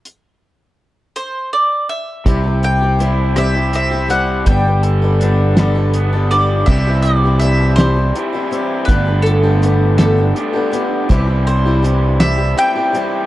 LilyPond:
<<
  \new Staff \with { instrumentName = "Mandolin" } { \time 6/8 \key c \lydian \tempo 4. = 54 r4. c''8 d''8 e''8~ | e''8 g''4 e''8 e''8 fis''8 | g''4 r4. d''8 | e''8 d''8 e''8 c''4. |
b'8 a'4 a'4 r8 | r8 c''4 e''8 g''4 | }
  \new Staff \with { instrumentName = "Steel-string acoustic guitar" } { \time 6/8 \key c \lydian r2. | <c g c' e' g'>16 <c' e' g'>8 <c' e' g'>16 <g c' e' g'>8 <c g c' e' g'>16 <c' e' g'>8 <c' e' g'>16 <g c' e' g'>8 | <g, d g b d' a'>16 <g b d' a'>8 <g b d' a'>16 <g b d' a'>8 <g, d g b d' a'>16 <g b d' a'>8 <g b d' a'>16 <g b d' a'>8 | <c g c' e' g'>16 <c' e' g'>8 <c' e' g'>16 <g c' e' g'>8 <c g c' e' g'>16 <c' e' g'>8 <c' e' g'>16 <g c' e' g'>8 |
<g, d a b d' g'>16 <a b d' g'>8 <a b d' g'>16 <a b d' g'>8 <g, d a b d' g'>16 <a b d' g'>8 <a b d' g'>16 <a b d' g'>8 | <c g c' e' g'>16 <c' e' g'>8 <c' e' g'>16 <g c' e' g'>8 <c g c' e' g'>16 <c' e' g'>8 <c' e' g'>16 <g c' e' g'>8 | }
  \new Staff \with { instrumentName = "Overdriven electric guitar" } { \time 6/8 \key c \lydian r2. | c8 g'8 e'8 g'8 c'8 g8 | g8 a'8 d'8 a'8 b8 g8 | <c e g e' g'>2 <c e g e' g'>4 |
<g, d g b d' g'>2 <g, d g b d' g'>4 | <c e g e' g'>2 <c e g e' g'>4 | }
  \new Staff \with { instrumentName = "Picked electric bass" } { \clef bass \time 6/8 \key c \lydian r2. | c,2. | g,,2. | c,2 r4 |
g,,2 r4 | c,2 r4 | }
  \new DrumStaff \with { instrumentName = "Drums" } \drummode { \time 6/8 hh4. hh4. | <hh bd>8 hh8 hh8 <hh ss>8 hh8 hh8 | <hh bd>8 hh8 hh8 <hh sn>8 hh8 hh8 | <cymc bd>8 hh8 hh8 <hh sn>8 hh8 hh8 |
<hh bd>8 hh8 hh8 <hh sn>8 hh8 hh8 | <hh bd>8 hh8 hh8 <hh sn>8 hh8 hh8 | }
>>